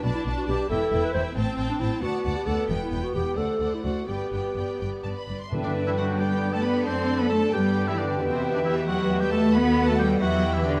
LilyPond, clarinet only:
\new Staff \with { instrumentName = "Clarinet" } { \time 6/8 \key g \major \tempo 4. = 90 r16 e'8 fis'16 g'8 a'8. b'16 c''8 | r16 c'8 d'16 e'8 fis'8. g'16 a'8 | r16 e'8 fis'16 g'8 a'8. e'16 fis'8 | g'2~ g'8 r8 |
b'2. | a'4. b'4.~ | b'2. | a'4. g'4. | }